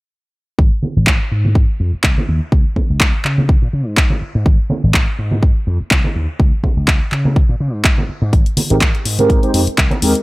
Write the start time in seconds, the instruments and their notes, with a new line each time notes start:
0.59 slap bass G#1, kick
0.83 high conga
0.95 slap bass G#1, tambourine
1.07 slap bass G#1, kick, clap
1.21 tambourine
1.32 slap bass G#2
1.45 tambourine, high conga
1.55 kick
1.80 slap bass F2
1.93 muted slap bass stroke, tambourine
2.04 slap bass C2, kick, clap
2.17 tambourine, high conga
2.28 slap bass D#2
2.41 tambourine
2.52 slap bass C#2, kick
2.66 tambourine
2.76 kick, high conga
2.89 slap bass C#2, tambourine
3.00 slap bass C#2, kick, clap
3.14 tambourine
3.25 slap bass C#3, clap
3.38 tambourine, high conga
3.49 kick
3.62 slap bass A#2
3.73 slap bass C#3
3.87 slap bass G#2, tambourine
3.97 kick, clap
4.10 tambourine, high conga
4.22 muted slap bass stroke
4.35 slap bass G#2
4.46 slap bass G#1, kick
4.59 tambourine
4.70 high conga
4.83 slap bass G#1, tambourine
4.94 kick, clap
5.08 tambourine
5.19 slap bass G#2
5.31 tambourine, high conga
5.43 kick
5.56 tambourine
5.67 slap bass F2
5.80 muted slap bass stroke, tambourine
5.91 slap bass C2, kick, clap, tambourine
6.04 tambourine, high conga
6.16 slap bass D#2
6.28 tambourine
6.40 slap bass C#2, kick
6.53 tambourine
6.63 kick, high conga
6.77 slap bass C#2, tambourine
6.88 slap bass C#2, kick, clap
7.01 tambourine
7.12 slap bass C#3, clap
7.25 tambourine, high conga
7.36 kick
7.49 slap bass A#2, tambourine
7.60 slap bass C#3
7.73 slap bass G#2, tambourine
7.85 kick, clap
7.98 tambourine, high conga
8.09 muted slap bass stroke
8.22 slap bass G#2, tambourine
8.33 slap bass G#1, kick, closed hi-hat
8.46 closed hi-hat, tambourine
8.57 open hi-hat, high conga
8.70 slap bass G#1, analog polysynth G#3 C4 D#4 G4 A#4, closed hi-hat, tambourine
8.81 kick, clap, closed hi-hat
8.95 closed hi-hat, tambourine
9.05 slap bass G#2, open hi-hat
9.18 analog polysynth G#3 C4 D#4 G4 A#4, closed hi-hat, tambourine, high conga
9.30 kick, closed hi-hat
9.42 analog polysynth G#3 C4 D#4 G4 C5, closed hi-hat, tambourine
9.53 slap bass F2, analog polysynth G#3 C4 D#4 G4 C5, open hi-hat
9.66 muted slap bass stroke, closed hi-hat, tambourine
9.78 slap bass C2, kick, clap, closed hi-hat
9.91 closed hi-hat, tambourine, high conga
10.02 slap bass D#2, analog polysynth G#3 C4 D#4 G4 A#4, open hi-hat
10.15 closed hi-hat, tambourine